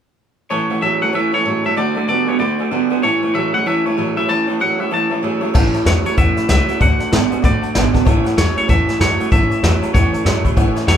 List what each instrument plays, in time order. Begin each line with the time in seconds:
0.50 steel-string acoustic guitar A2 E3 A3 C#4 A4, clean electric guitar A2 E3 C#5, honky-tonk piano C#5 E5 A5
0.69 clean electric guitar A2 E3, steel-string acoustic guitar A3 C#4 A4, honky-tonk piano C#5 E5 F#5
0.81 steel-string acoustic guitar A2 E3 A3 C#4 A4, clean electric guitar A2 F#3 E5, honky-tonk piano C#5 E5 A5
1.01 clean electric guitar A2 F#3 F#5, steel-string acoustic guitar A3 C#4 A4, honky-tonk piano C#5 E5 A5
1.13 clean electric guitar A2 E3 E5, steel-string acoustic guitar E3 A3 C#4 A4, honky-tonk piano C#5 E5 A5
1.32 clean electric guitar A2 E3 C#5, steel-string acoustic guitar A3 C#4 A4, honky-tonk piano C#5 E5 B5
1.45 steel-string acoustic guitar A2 E3 A3 C#4 A4, clean electric guitar A2 F#3, honky-tonk piano C#5 E5 A5
1.64 clean electric guitar A2 F#3 E5, steel-string acoustic guitar A3 C#4 A4, honky-tonk piano C#5 E5 A5
1.76 steel-string acoustic guitar D3 A3 D4 F#4, clean electric guitar D3 A3 D5, honky-tonk piano D5 F#5 A5
1.95 clean electric guitar D3 A3, steel-string acoustic guitar A3 D4 F#4, honky-tonk piano D5 F#5 A5
2.08 steel-string acoustic guitar D3 A3 D4 F#4, clean electric guitar D3 B3 D5, honky-tonk piano D5 F#5 A5
2.27 clean electric guitar D3 B3 C#5, steel-string acoustic guitar A3 D4 F#4, honky-tonk piano D5 F#5 A5
2.39 steel-string acoustic guitar D3 A3 D4 F#4, clean electric guitar D3 A3 D5, honky-tonk piano D5 F#5 B5
2.59 clean electric guitar D3 A3, steel-string acoustic guitar A3 D4 F#4, honky-tonk piano D5 F#5 G#5
2.71 clean electric guitar D3 B3, steel-string acoustic guitar D3 A3 D4 F#4, honky-tonk piano D5 F#5 A5
2.90 clean electric guitar D3 B3, steel-string acoustic guitar A3 D4 F#4, honky-tonk piano D5 F#5 G#5
3.03 steel-string acoustic guitar A2 E3 A3 C#4 E4, clean electric guitar A2 E3 C#5, honky-tonk piano C#5 E5 A5
3.22 clean electric guitar A2 E3, steel-string acoustic guitar A3 C#4 E4, honky-tonk piano C#5 E5 G#5
3.34 steel-string acoustic guitar A2 E3 A3 C#4 E4, clean electric guitar A2 F#3 E5, honky-tonk piano C#5 E5 A5
3.54 clean electric guitar A2 F#3 F#5, steel-string acoustic guitar A3 C#4 E4, honky-tonk piano C#5 E5 B5
3.66 clean electric guitar A2 E3 E5, steel-string acoustic guitar E3 A3 C#4 E4, honky-tonk piano C#5 E5 A5
3.86 clean electric guitar A2 E3 C#5, steel-string acoustic guitar A3 C#4 E4, honky-tonk piano C#5 E5 A5
3.97 clean electric guitar A2 F#3, steel-string acoustic guitar A2 E3 A3 C#4 E4, honky-tonk piano C#5 E5 A5
4.16 clean electric guitar A2 F#3 E5, steel-string acoustic guitar A3 C#4 E4, honky-tonk piano C#5 E5 B5
4.28 clean electric guitar A2 E3 A5, steel-string acoustic guitar A2 E3 A3 C#4 E4, honky-tonk piano C#5 E5 B5
4.47 clean electric guitar A2 E3, steel-string acoustic guitar A3 C#4 E4, honky-tonk piano C#5 E5 A5
4.60 clean electric guitar A2 F#3 F#5, steel-string acoustic guitar A2 E3 A3 C#4 E4, honky-tonk piano C#5 E5 A5
4.79 clean electric guitar A2 F#3 E5, steel-string acoustic guitar A3 C#4 E4, honky-tonk piano C#5 E5 F#5
4.91 clean electric guitar A2 E3 A5, steel-string acoustic guitar E3 A3 C#4 E4, honky-tonk piano C#5 E5 A5
5.10 clean electric guitar A2 E3, steel-string acoustic guitar A3 C#4 E4, honky-tonk piano C#5 E5 A5
5.22 steel-string acoustic guitar A2 E3 A3 C#4 E4, clean electric guitar A2 F#3, honky-tonk piano C#5 E5 G#5
5.41 clean electric guitar A2 F#3, steel-string acoustic guitar A3 C#4 E4, honky-tonk piano C#5 E5 A5
5.54 upright bass A1, steel-string acoustic guitar A2 E3 A3 C#4 E4, clean electric guitar A2 E3, honky-tonk piano C#5 E5 A5, kick, crash
5.73 steel-string acoustic guitar A3 C#4 E4, honky-tonk piano C#5 E5 A5, muted upright bass stroke, closed hi-hat
5.85 upright bass E2, clean electric guitar A2 F#3 C#5, steel-string acoustic guitar E3 A3 C#4, honky-tonk piano C#5 E5 B5, snare, closed hi-hat
6.04 clean electric guitar A2 F#3 C#5, steel-string acoustic guitar A3 C#4 E4, honky-tonk piano C#5 E5 A5, muted upright bass stroke, closed hi-hat
6.17 upright bass E2, steel-string acoustic guitar A2 E3 A3 C#4 E4, clean electric guitar A2 E3 E5, honky-tonk piano C#5 E5 F#5, kick, closed hi-hat
6.36 steel-string acoustic guitar A3 C#4 E4, honky-tonk piano C#5 E5 B5, muted upright bass stroke, snare, closed hi-hat
6.48 upright bass C#2, clean electric guitar A2 F#3 E5, steel-string acoustic guitar E3 A3 C#4 E4, honky-tonk piano C#5 E5 F#5, snare, closed hi-hat
6.67 clean electric guitar A2 F#3, steel-string acoustic guitar A3 C#4 E4, honky-tonk piano C#5 E5 F#5, snare, closed hi-hat
6.80 upright bass D2, steel-string acoustic guitar D3 A3 D4 F#4, clean electric guitar D3 A3 F#5, honky-tonk piano D5 F#5 A5, kick, closed hi-hat
6.99 steel-string acoustic guitar A3 D4 F#4, honky-tonk piano D5 F#5 A5, snare, closed hi-hat
7.11 upright bass A2, steel-string acoustic guitar D3 A3 D4 F#4, clean electric guitar D3 B3, honky-tonk piano D5 F#5 A5, snare, closed hi-hat
7.30 clean electric guitar D3 B3, steel-string acoustic guitar A3 D4 F#4, honky-tonk piano D5 F#5 G#5, muted upright bass stroke, closed hi-hat
7.42 upright bass A2, steel-string acoustic guitar D3 A3 D4 F#4, clean electric guitar D3 A3 D5, honky-tonk piano D5 F#5 B5, kick, closed hi-hat
7.62 steel-string acoustic guitar A3 D4 F#4, honky-tonk piano D5 F#5 A5, muted upright bass stroke, closed hi-hat
7.74 upright bass G#1, steel-string acoustic guitar D3 A3 D4, clean electric guitar D3 B3, honky-tonk piano D5 F#5 A5, snare, closed hi-hat
7.93 clean electric guitar D3 B3, steel-string acoustic guitar A3 D4 F#4, honky-tonk piano D5 F#5 A5, muted upright bass stroke, kick, snare, closed hi-hat
8.05 upright bass A1, steel-string acoustic guitar A2 E3 A3 C#4 E4, clean electric guitar A2 E3, honky-tonk piano C#5 E5 A5, kick, closed hi-hat
8.24 steel-string acoustic guitar A3 C#4 E4, honky-tonk piano C#5 E5 F#5, muted upright bass stroke, snare, closed hi-hat
8.36 upright bass E2, clean electric guitar A2 F#3 C#5, steel-string acoustic guitar E3 A3 C#4 E4, honky-tonk piano C#5 E5 B5, snare, closed hi-hat
8.56 clean electric guitar A2 F#3 C#5, steel-string acoustic guitar A3 C#4 E4, honky-tonk piano C#5 E5 G#5, muted upright bass stroke, closed hi-hat
8.68 upright bass E2, steel-string acoustic guitar A2 E3 A3 C#4 E4, clean electric guitar A2 E3 E5, honky-tonk piano C#5 E5 A5, kick, closed hi-hat
8.87 steel-string acoustic guitar A3 C#4 E4, honky-tonk piano C#5 E5 G#5, muted upright bass stroke, snare, closed hi-hat
8.99 upright bass F#2, clean electric guitar A2 F#3 C#5, steel-string acoustic guitar E3 A3 C#4 E4, honky-tonk piano C#5 E5 A5, snare, closed hi-hat
9.19 clean electric guitar A2 F#3, steel-string acoustic guitar A3 C#4 E4, honky-tonk piano C#5 E5 F#5, muted upright bass stroke, closed hi-hat
9.31 upright bass A1, steel-string acoustic guitar A2 E3 A3 C#4 E4, clean electric guitar A2 E3 E5, honky-tonk piano C#5 E5 A5, kick, closed hi-hat
9.50 steel-string acoustic guitar A3 E4, honky-tonk piano C#5 E5 G#5, muted upright bass stroke, closed hi-hat
9.62 upright bass E2, clean electric guitar A2 F#3, steel-string acoustic guitar E3 A3 C#4 E4, honky-tonk piano C#5 E5 A5, snare, closed hi-hat
9.82 clean electric guitar A2 F#3, steel-string acoustic guitar A3 C#4 E4, honky-tonk piano C#5 E5 A5, muted upright bass stroke, closed hi-hat
9.94 upright bass E2, clean electric guitar A2 E3 C#5, steel-string acoustic guitar A2 E3 A3 C#4 E4, honky-tonk piano C#5 E5 F#5, kick, snare, closed hi-hat
10.12 steel-string acoustic guitar A3 C#4 E4, honky-tonk piano C#5 E5 A5, muted upright bass stroke, closed hi-hat
10.24 upright bass F#2, clean electric guitar A2 F#3, steel-string acoustic guitar E4, honky-tonk piano C#5 E5 A5, snare, closed hi-hat
10.44 clean electric guitar A2 F#3, steel-string acoustic guitar A3 C#4 E4, honky-tonk piano C#5 E5 B5, muted upright bass stroke, kick, closed hi-hat
10.56 upright bass A1, clean electric guitar A2 E3, steel-string acoustic guitar A2 E3 A3 C#4 E4, honky-tonk piano C#5 E5 F#5, kick, closed hi-hat
10.75 steel-string acoustic guitar A3 C#4 E4, honky-tonk piano C#5 E5 G#5, muted upright bass stroke, snare, closed hi-hat
10.87 upright bass E2, clean electric guitar A2 F#3 C#5, steel-string acoustic guitar E3 A3 C#4 E4, honky-tonk piano C#5 E5 A5, snare, closed hi-hat